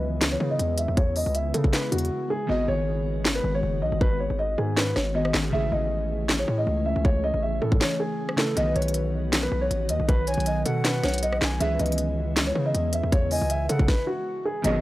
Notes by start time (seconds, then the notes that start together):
Already playing: C#2 C#3 E3 G#3 B3 C#4 E4 G#4 B4 D#5
0.21 snare, clap, closed hi-hat
0.32 C#5
0.40 C#3
0.50 D#5
0.59 E2, closed hi-hat
0.78 E5, closed hi-hat
0.88 E2
0.97 C#5, kick, closed hi-hat
1.16 D#5, open hi-hat
1.26 C#2
1.35 E5, closed hi-hat
1.54 C#3 A4, closed hi-hat
1.64 kick
1.73 B4, snare, clap, closed hi-hat
1.92 E2 F#4, closed hi-hat
1.98 closed hi-hat
2.05 closed hi-hat
2.30 G#4
2.47 G#1 D#3 B3 F#4 D#5
2.51 G#4
2.68 G#1 C#5
3.25 snare, clap
3.35 B4
3.44 G#1
3.55 C#5
3.63 F#1
3.82 B1 D#5
3.92 G#1
4.01 B4, kick
4.20 C#5
4.30 G#1
4.39 D#5
4.58 G#2 G#4
4.77 B4, snare, clap
4.96 G#1 C#5, cross-stick, snare
5.14 D#3 B3 F#4 G#4 D#5
5.25 cross-stick
5.34 G#1, snare, clap
5.50 A1 C#3 E3 A3 C#4 E4 G#4 E5
5.55 G#4
5.72 A1 D#5
6.29 snare, clap
6.39 C#5
6.48 A2
6.58 D#5
6.67 C#2
6.86 E5
6.96 C#2
7.05 C#5, kick
7.24 D#5
7.34 A1
7.43 E5
7.62 A2 A4
7.72 kick
7.81 C#5, snare, clap
8.00 G#4
8.29 cross-stick
8.36 C#3 A3 E4 A4 B4, snare, clap
8.55 B1 D#3 F#3 B3 F#4 D#5, closed hi-hat
8.60 B4
8.76 B1 C#5, closed hi-hat
8.82 closed hi-hat
8.88 closed hi-hat
8.94 closed hi-hat
9.33 snare, clap, closed hi-hat
9.43 B4
9.52 B1
9.61 C#5
9.71 A1, closed hi-hat
9.89 D#2 D#5, closed hi-hat
10.00 B1
10.09 B4, kick, closed hi-hat
10.27 C#5 G#5, closed hi-hat, open hi-hat
10.34 B1, closed hi-hat
10.40 closed hi-hat
10.46 D#5, closed hi-hat
10.66 B2 A4 F#5, closed hi-hat
10.84 B4, snare, clap, closed hi-hat
11.02 B1 D#3 B3 F#4 B4 C#5, cross-stick, snare, closed hi-hat
11.09 closed hi-hat
11.14 closed hi-hat
11.18 closed hi-hat
11.23 D#5, closed hi-hat
11.33 cross-stick
11.41 B1 G#5, snare, clap
11.59 C#2 C#3 E3 G#3 C#4 E4 G#4 E5, closed hi-hat
11.63 B4
11.79 C#2 D#5, closed hi-hat
11.86 closed hi-hat
11.92 closed hi-hat
11.98 closed hi-hat
12.36 snare, clap, closed hi-hat
12.47 C#5
12.55 C#3
12.66 D#5
12.74 E2, closed hi-hat
12.93 E5, closed hi-hat
13.03 E2
13.12 C#5, kick, closed hi-hat
13.31 D#5 G#5, open hi-hat
13.41 C#2
13.50 E5, closed hi-hat
13.69 C#3 A4 F#5, closed hi-hat
13.79 kick
13.88 B4, kick, snare
14.07 F#4
14.45 G#4
14.62 G#1 B2 D#3 F#3 B3 F#4 D#5, closed hi-hat
14.66 G#4